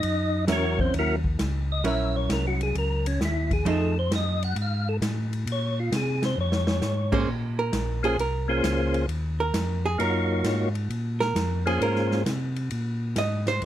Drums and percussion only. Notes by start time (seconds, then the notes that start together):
0.03 ride
0.48 snare, hi-hat pedal, ride
0.79 kick
0.94 ride
1.24 kick
1.39 snare, hi-hat pedal, ride
1.85 ride
2.30 snare, hi-hat pedal, ride
2.61 ride
2.75 ride
3.06 ride
3.21 snare, hi-hat pedal
3.51 kick, ride
3.66 ride
4.11 snare, hi-hat pedal, ride
4.43 ride
4.56 ride
5.02 snare, hi-hat pedal, ride
5.33 ride
5.47 ride
5.92 snare, hi-hat pedal, ride
6.22 snare, ride
6.52 snare
6.67 snare
6.82 snare, hi-hat pedal
7.12 kick, crash
7.73 snare, hi-hat pedal, ride
8.04 ride
8.19 ride
8.64 snare, hi-hat pedal, ride
8.94 ride
9.09 ride
9.54 snare, hi-hat pedal, ride
10.00 ride
10.44 snare, hi-hat pedal, ride
10.75 ride
10.90 ride
11.21 snare
11.36 snare, hi-hat pedal, ride
11.67 ride
11.82 ride
11.96 snare
12.12 snare
12.26 snare, hi-hat pedal, ride
12.56 ride
12.71 ride
13.16 snare, hi-hat pedal, ride
13.47 snare, ride
13.62 ride